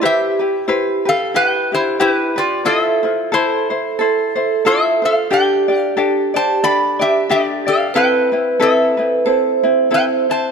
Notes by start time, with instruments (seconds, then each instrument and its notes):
0.01 ukulele E4 G4 B4 C5, vibraphone G4
0.05 resonator guitar played with a steel bar G4 E5
0.39 ukulele E4 G4 B4
0.68 ukulele E4 G4 B4 C5
1.05 ukulele G4 B4, resonator guitar played with a steel bar F5
1.09 resonator guitar played with a steel bar A4
1.34 ukulele E4 G4 B4, resonator guitar played with a steel bar B4 G5
1.72 ukulele E4 G4, resonator guitar played with a steel bar E4 C5
2.00 ukulele E4 G4 B4, resonator guitar played with a steel bar E4 B4
2.36 resonator guitar played with a steel bar F4 D5, ukulele G4 B4
2.65 ukulele E4 F4 A4 C5, vibraphone A4, resonator guitar played with a steel bar A4 E5
3.03 ukulele E4 F4 C5
3.32 ukulele E4 A4 C5, resonator guitar played with a steel bar E4 C5
3.70 ukulele E4 C5
3.99 ukulele E4 A4 C5, vibraphone A4
4.36 ukulele E4 C5
4.65 ukulele E4 F4 A4 C5, resonator guitar played with a steel bar A4 E5
5.02 ukulele F4 C5, resonator guitar played with a steel bar A4 F5
5.31 ukulele D4 G4 A4 D5, vibraphone G4, resonator guitar played with a steel bar D5 G5
5.68 ukulele D4 G4 D5
5.80 resonator guitar played with a steel bar F5
5.97 ukulele D4 G4 A4 D5
6.34 ukulele D4 G4 D5, resonator guitar played with a steel bar C5 A5
6.63 ukulele D4 G4 A4 D5, resonator guitar played with a steel bar D5 B5
6.99 ukulele D4 G4 D5, resonator guitar played with a steel bar G4 E5
7.29 ukulele D4 G4 A4 D5, resonator guitar played with a steel bar G4 D5
7.67 ukulele D4 G4 D5, resonator guitar played with a steel bar A4 F5
7.94 ukulele C4 E4 A4 B4, vibraphone B4, resonator guitar played with a steel bar B4 G5
8.32 ukulele C4 E4 B4
8.60 ukulele C4 E4 A4 B4, resonator guitar played with a steel bar A4 E5
8.97 ukulele C4 E4 B4
9.26 ukulele C4 E4 A4, vibraphone C5
9.63 ukulele C4 E4
9.91 ukulele C4 E4 A4, resonator guitar played with a steel bar G5
9.95 resonator guitar played with a steel bar B4
10.30 ukulele C4 E4, resonator guitar played with a steel bar C5 A5